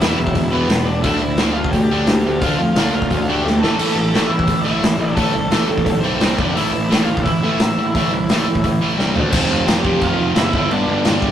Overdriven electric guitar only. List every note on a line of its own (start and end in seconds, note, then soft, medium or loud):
0.00 0.49 E4 medium
0.00 0.53 E5 medium
0.52 0.88 B4 loud
0.56 0.85 B3 medium
0.85 1.02 D5 medium
0.90 1.05 D4 medium
1.02 1.56 E5 medium
1.06 1.53 E4 medium
1.53 1.70 F5 medium
1.58 1.73 F4 medium
1.70 2.39 G5 medium
1.75 2.39 G4 medium
2.40 2.75 F4 medium
2.40 2.72 F5 loud
2.73 3.23 F5 loud
2.77 3.25 F4 medium
3.23 3.57 G5 loud
3.28 3.60 G4 medium
3.59 4.32 A5 loud
3.64 4.28 A4 medium
4.27 4.61 E5 medium
4.32 4.64 E4 medium
4.63 5.07 E5 loud
4.67 5.14 E4 medium
5.07 5.18 D5 loud
5.15 6.05 A5 loud
5.20 6.00 A4 medium
6.00 6.38 C5 medium
6.05 6.36 C4 medium
6.37 6.56 D4 medium
6.37 6.54 D5 medium
6.54 7.05 E4 medium
6.54 7.05 E5 loud
7.05 7.24 F4 medium
7.05 7.22 F5 medium
7.22 8.94 E4 medium
7.22 8.92 E5 medium
9.32 9.65 C4 medium
9.32 9.68 C5 medium
9.67 10.00 G4 medium
9.67 10.02 G5 loud
10.03 10.35 F4 medium
10.03 10.34 F5 loud
10.36 10.68 E4 medium
10.36 10.71 E5 medium
10.71 11.31 D4 medium
10.71 11.31 D5 medium